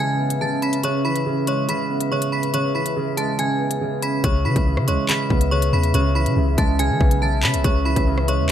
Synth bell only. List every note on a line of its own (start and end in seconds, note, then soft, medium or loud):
0.00 0.38 G#5 medium
0.00 0.39 G#6 medium
0.41 0.58 A5 medium
0.41 0.59 A6 medium
0.62 0.80 B5 medium
0.62 0.80 B6 medium
0.84 1.02 C#5 medium
0.84 1.01 C#6 medium
1.05 1.45 B5 medium
1.05 1.45 B6 medium
1.47 1.65 C#5 medium
1.47 1.65 C#6 medium
1.69 2.09 B5 medium
1.69 2.09 B6 medium
2.12 2.29 C#5 medium
2.12 2.29 C#6 medium
2.32 2.50 B5 medium
2.32 2.50 B6 medium
2.54 2.72 C#5 medium
2.54 2.71 C#6 medium
2.75 3.15 B5 medium
2.75 3.15 B6 medium
3.17 3.35 A5 medium
3.17 3.35 A6 medium
3.39 3.99 G#5 medium
3.39 3.99 G#6 medium
4.02 4.20 B5 medium
4.02 4.20 B6 medium
4.24 4.42 C#5 medium
4.24 4.41 C#6 loud
4.45 4.85 B5 medium
4.45 4.86 B6 medium
4.88 5.05 C#5 medium
4.88 5.05 C#6 medium
5.09 5.49 B5 medium
5.09 5.49 B6 medium
5.51 5.69 C#5 medium
5.51 5.69 C#6 loud
5.73 5.90 B5 medium
5.73 5.91 B6 medium
5.94 6.12 C#5 medium
5.94 6.12 C#6 medium
6.15 6.55 B5 medium
6.15 6.56 B6 medium
6.58 6.75 A5 medium
6.58 6.76 A6 medium
6.79 7.19 G#5 medium
6.79 7.20 G#6 medium
7.22 7.39 A5 medium
7.22 7.40 A6 medium
7.43 7.60 B5 medium
7.43 7.61 B6 medium
7.64 7.82 C#5 medium
7.64 7.82 C#6 medium
7.85 8.26 B5 medium
7.85 8.26 B6 medium
8.28 8.46 C#5 medium
8.28 8.46 C#6 medium